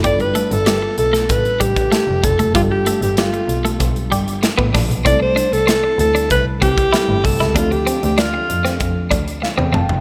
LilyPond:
<<
  \new Staff \with { instrumentName = "Alto saxophone" } { \time 4/4 \key g \mixolydian \tempo 4 = 96 d''16 b'8 a'8. a'8 b'8 g'4 a'8 | f'16 g'8 g'16 f'4 r2 | d''16 c''8 a'8. a'8 b'8 g'4 a'8 | f'16 g'8 g'16 f'4 r2 | }
  \new Staff \with { instrumentName = "FM electric piano" } { \time 4/4 \key g \mixolydian << { b'16 r2. r8. | r1 | r1 | r2. f''16 g''16 a''8 | } \\ { <g b d' f' a'>1 | <g b d' f' g' a'>1 | <g a c' e' a'>2. <g a c' e' a'>4 | <f a c' d' a'>1 | } >> }
  \new Staff \with { instrumentName = "Clean electric guitar" } { \time 4/4 \key g \mixolydian g16 r16 a16 r16 g16 r8 a16 r8 g16 r16 a16 r8 a16 | g16 r16 a16 r16 g16 r8 a16 r8 g16 r8 b16 d'16 r16 | c'16 r16 d'16 r16 c'16 r8 d'16 r8 c'16 r16 e'16 r8 e'16 | d'16 r16 c'16 r16 d'16 r8 c'16 r8 d'16 r8 c'16 c'16 r16 | }
  \new Staff \with { instrumentName = "Double bass" } { \clef bass \time 4/4 \key g \mixolydian g,,8 r16 g,,8 r16 b,,8 a,,8 a,,8 r16 f,,16 f,,16 fis,,16 | g,,8 r16 g,,8 r16 b,,8 b,,8 g,,8 r16 a,,16 bes,,16 b,,16 | c,8 r16 c,8 r16 d,8 c,8 c,8 r16 g,,16 c,16 des,16 | d,8 r16 d,8 r16 f,8 f,8 d,8 r16 e,16 f,,16 fis,,16 | }
  \new DrumStaff \with { instrumentName = "Drums" } \drummode { \time 4/4 <hh bd>16 hh16 hh16 hh16 <hh sn>8 hh16 <hh sn>16 <hh bd>16 hh16 <hh bd>16 <hh bd>16 <hh sn>8 <hh bd>16 hh16 | <hh bd>8 hh16 hh16 <hh sn>16 hh16 hh16 hh16 <hh bd>16 hh16 hh16 hh16 <hh sn>16 bd16 <hho bd sn>16 hh16 | <hh bd>8 hh16 hh16 <hh sn>8 hh16 hh16 <hh bd>8 <hh bd>16 <hh bd>16 <hh sn>8 <hho bd>16 <hh sn>16 | <hh bd>16 hh16 hh16 hh16 <hh sn>8 hh16 <hh sn>16 <hh bd>8 <hh bd>16 hh16 sn16 tommh16 toml16 tomfh16 | }
>>